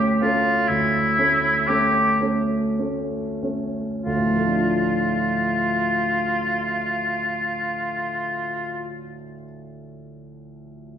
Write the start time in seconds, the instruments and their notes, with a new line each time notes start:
Already playing: grand piano D2 A3 C#4
0.21 grand piano A3 C#4, oboe F4
0.68 grand piano D2, oboe E4
1.18 grand piano A3 C#4
1.67 grand piano A3 C#4, oboe G4
2.21 grand piano A3 C#4
2.79 grand piano A3 C#4
3.43 grand piano A3 C#4
4.05 grand piano D2, oboe F4
4.16 grand piano A2
4.26 grand piano F3
4.36 grand piano A3
4.46 grand piano D4
4.57 grand piano F4